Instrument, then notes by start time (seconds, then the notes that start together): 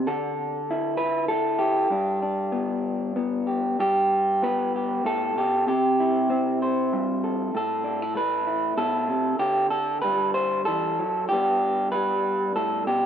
clean electric guitar
Already playing: D4
0.07 D3 A4
0.71 E4
0.97 B4
1.28 E4 A4
1.59 G4
1.90 G2 D4
2.22 D4
2.52 B3
3.16 B3
3.47 G4
3.79 G2 G4
4.42 B3 B4
4.76 G4
5.05 A2 A4
5.36 B2 G4
5.67 C3 G4
6.00 E4
6.30 C4
6.62 C5
6.93 G2
7.24 A4
7.55 A2 A4
7.84 D4
8.02 E4
8.15 A3 B4
8.47 E4
8.77 B2 A4
9.08 C3
9.39 D3 G4
9.70 A4
10.02 G3 B4
10.34 C5
10.65 E3 A4
10.99 F#3
11.29 G2 G3 G4
11.33 B3 D4
11.92 G3 B4
12.56 A2 A4
12.87 B2 G4